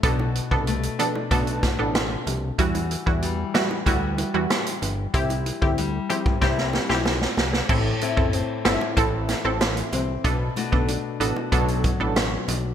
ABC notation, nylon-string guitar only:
X:1
M:4/4
L:1/8
Q:1/4=94
K:Ador
V:1 name="Nylon-string guitar"
[B,,F]2 A, D [A,DF]4 | [E,F]2 G, B, [G,B,F]4 | E2 G, C [G,CE]4 | A,, [A,CE] C E E,3 C |
B,, [A,DF] D F F,3 D |]